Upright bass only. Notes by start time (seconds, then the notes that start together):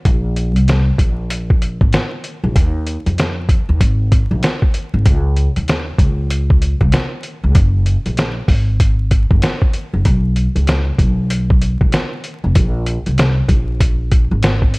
0.05 A#1
0.56 C2
0.98 A#1
1.81 G#1
2.44 A#1
2.55 D#2
3.06 F2
3.69 D#2
3.81 G#1
4.31 A#1
4.94 G#1
5.06 C#2
5.57 D#2
5.98 C#2
6.81 C2
7.44 C#2
7.55 F#1
8.06 A#1
8.48 G#1
9.31 F#1
9.93 F#1
10.05 B1
10.56 C#2
10.98 B1
11.81 A#1
12.44 F1
12.56 A#1
13.07 C2
13.48 A#1
14.31 G#1